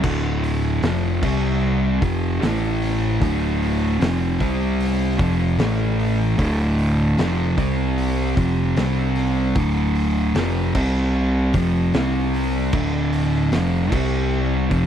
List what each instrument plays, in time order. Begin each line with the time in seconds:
0.03 picked electric bass D1, distorted electric guitar D2 A2 D3, kick, crash
0.44 open hi-hat
0.82 picked electric bass F1, distorted electric guitar F2 C3 F3, snare, open hi-hat
1.22 picked electric bass C2, distorted electric guitar C3 G3 C4, kick, crash
2.02 picked electric bass F1, distorted electric guitar F2 C3 F3, kick, open hi-hat
2.41 picked electric bass A1, distorted electric guitar A2 E3 A3, snare, open hi-hat
2.82 snare, open hi-hat
3.21 picked electric bass D1, distorted electric guitar D2 A2 D3, kick, open hi-hat
3.62 open hi-hat
3.99 picked electric bass F1, distorted electric guitar F2 C3 F3, snare, open hi-hat
4.40 picked electric bass C2, distorted electric guitar C3 G3 C4, kick, open hi-hat
4.80 open hi-hat
5.19 picked electric bass F1, distorted electric guitar F2 C3 F3, kick, open hi-hat
5.56 picked electric bass A1, distorted electric guitar A2, open hi-hat
5.60 distorted electric guitar E3 A3, snare
6.00 open hi-hat
6.38 picked electric bass D1, distorted electric guitar D2 A2 D3, kick, open hi-hat
6.79 open hi-hat
7.18 picked electric bass F1, distorted electric guitar F2 C3 F3, snare, open hi-hat
7.57 picked electric bass C2, distorted electric guitar C3 G3 C4, kick, open hi-hat
7.98 open hi-hat
8.37 picked electric bass F1, distorted electric guitar F2 C3 F3, kick, open hi-hat
8.76 picked electric bass C2, distorted electric guitar C3 G3 C4, snare, open hi-hat
9.15 snare, open hi-hat
9.55 picked electric bass D1, distorted electric guitar D2 A2 D3, kick, open hi-hat
9.95 open hi-hat
10.35 picked electric bass F1, distorted electric guitar F2 C3 F3, snare, open hi-hat
10.75 picked electric bass C2, distorted electric guitar C3 G3 C4, kick, crash
11.54 picked electric bass F1, distorted electric guitar F2 C3 F3, kick, open hi-hat
11.94 picked electric bass C2, distorted electric guitar C3 G3 C4, snare, open hi-hat
12.33 open hi-hat
12.73 picked electric bass D1, distorted electric guitar D2 A2 D3, kick, crash
13.13 open hi-hat
13.51 picked electric bass F1, distorted electric guitar F2 C3 F3, snare, open hi-hat
13.92 picked electric bass C2, distorted electric guitar C3 G3 C4, kick, crash
14.70 picked electric bass F1, distorted electric guitar F2 C3 F3, kick, open hi-hat